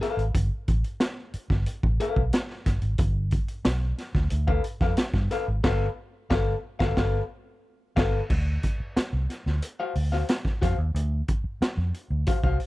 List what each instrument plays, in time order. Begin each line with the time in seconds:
0.01 clean electric guitar A4 B4 F5, snare, closed hi-hat
0.17 fingered electric bass G#1, closed hi-hat
0.35 fingered electric bass G1, kick, closed hi-hat
0.68 fingered electric bass A1, kick, closed hi-hat
0.84 closed hi-hat
1.00 snare, closed hi-hat
1.33 muted fingered electric bass stroke, closed hi-hat
1.50 fingered electric bass G1, kick, snare
1.66 closed hi-hat
1.83 fingered electric bass A1, kick
2.00 clean electric guitar A4 B4 F5, closed hi-hat
2.16 fingered electric bass B1, kick
2.33 snare, closed hi-hat
2.50 snare
2.66 fingered electric bass G1, kick, snare, closed hi-hat
2.82 fingered electric bass G#1, closed hi-hat
2.98 fingered electric bass G1, kick, closed hi-hat
3.31 kick, closed hi-hat
3.48 closed hi-hat
3.65 fingered electric bass B1, snare, closed hi-hat
3.98 snare, closed hi-hat
4.15 fingered electric bass D2, kick, snare
4.30 fingered electric bass D2, closed hi-hat
4.47 clean electric guitar A4 B4 F5, kick
4.64 closed hi-hat
4.80 fingered electric bass F2, clean electric guitar A4 B4 F5, kick, snare
4.97 snare, closed hi-hat
5.14 fingered electric bass G2, kick, snare
5.31 clean electric guitar A4 B4 F5, snare, closed hi-hat
5.48 fingered electric bass G#1
5.64 fingered electric bass G1, clean electric guitar A4 B4 F5, kick, snare, crash
6.30 fingered electric bass G1, clean electric guitar A4 B4 F5, kick, snare
6.79 fingered electric bass G1, clean electric guitar A4 B4 F5, kick, snare
6.97 fingered electric bass G1, clean electric guitar A4 B4 F5, kick, snare
7.96 fingered electric bass G1, clean electric guitar A4 B4 F5, kick, snare, crash
8.30 fingered electric bass D2, kick, crash
8.63 kick, closed hi-hat
8.80 muted fingered electric bass stroke
8.96 muted fingered electric bass stroke, snare, closed hi-hat
9.13 fingered electric bass C2
9.30 snare, closed hi-hat
9.46 fingered electric bass D2, snare
9.62 closed hi-hat
9.80 clean electric guitar F#4 C5 F5
9.95 fingered electric bass D2, open hi-hat
10.12 clean electric guitar F#4 C5 F5, snare
10.28 snare, closed hi-hat
10.45 kick, snare
10.62 fingered electric bass F2, clean electric guitar F#4 C5 F5, kick, snare, closed hi-hat
10.78 fingered electric bass D#2
10.95 fingered electric bass D2, closed hi-hat
11.28 kick, closed hi-hat
11.44 muted fingered electric bass stroke
11.61 muted fingered electric bass stroke, snare, closed hi-hat
11.77 fingered electric bass F2
11.94 closed hi-hat
12.10 fingered electric bass D2
12.26 clean electric guitar F#4 C5 F5, kick, closed hi-hat
12.43 fingered electric bass C2, clean electric guitar F#4 C5 F5, kick
12.60 open hi-hat